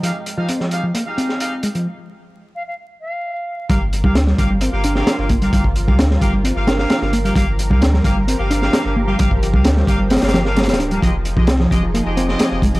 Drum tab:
HH |x---x---x---x---x---x---x---x-x-|--------------------------------|x---x---x---x---x---x---x---x-x-|x---x---x---x---x---x---x---x-x-|
SD |----------o-----------o---------|--------------------------------|--------o-o-----------o-o-------|--------o-o---------o-o-o-o-----|
BD |--------------------------------|--------------------------------|o-----o-----o---------------o---|o-o---o-----o-------------------|

HH |x---x---x---x---x---x---x-------|x---x---x---x---xxxxx---xxxxx-x-|x---x---x---x---x---x---x---x-x-|
SD |--------o-o-----------o-o-------|--------o-o-----ooooo-o-oooo----|--------o-o-----------o-o-------|
BD |o-----o-----o-------------------|o-o---o-----o-------------------|o-----o-----o---------------o---|